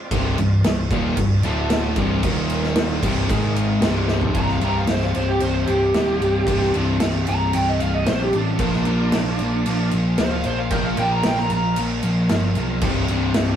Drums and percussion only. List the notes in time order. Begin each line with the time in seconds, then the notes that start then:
0.11 kick, crash
0.38 crash
0.64 snare, crash
0.91 kick, crash
1.17 kick, crash
1.43 crash
1.70 snare, crash
1.96 kick, crash
2.23 kick, crash
2.50 crash
2.63 snare
2.76 snare, crash
3.03 kick, crash
3.30 kick, crash
3.56 crash
3.82 snare, crash
4.08 snare
4.21 floor tom
4.35 kick, crash
4.48 snare
4.61 crash
4.87 snare, crash
5.01 snare
5.15 crash
5.40 crash
5.67 crash
5.94 snare, crash
6.22 crash
6.47 kick, crash
6.61 snare
6.74 crash
7.00 snare, crash
7.27 crash
7.53 crash
7.80 crash
8.06 snare, crash
8.33 crash
8.59 kick, crash
8.73 snare
8.85 crash
9.12 snare, crash
9.39 crash
9.66 crash
9.91 crash
10.18 snare, crash
10.44 crash
10.71 kick, crash
10.97 crash
11.23 snare, crash
11.37 snare
11.50 crash
11.76 crash
12.03 crash
12.29 snare, crash
12.55 crash
12.81 kick, crash
13.08 crash
13.34 snare, crash